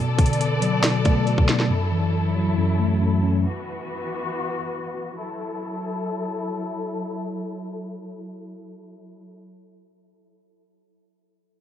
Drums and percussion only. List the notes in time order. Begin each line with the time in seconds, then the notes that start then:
0.19 kick, closed hi-hat
0.26 closed hi-hat
0.33 closed hi-hat
0.41 closed hi-hat
0.62 closed hi-hat
0.84 snare, closed hi-hat
1.05 kick, closed hi-hat
1.27 closed hi-hat
1.38 kick
1.49 snare, closed hi-hat
1.60 snare